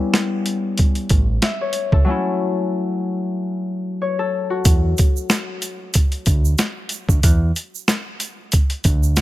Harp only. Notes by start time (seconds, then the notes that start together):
Already playing: G3 B3 C#4 E4
1.43 E5
1.61 C#5
1.93 A4
2.04 F#3 A3 C#4
2.10 E4
4.02 C#5
4.19 A4
4.50 F#4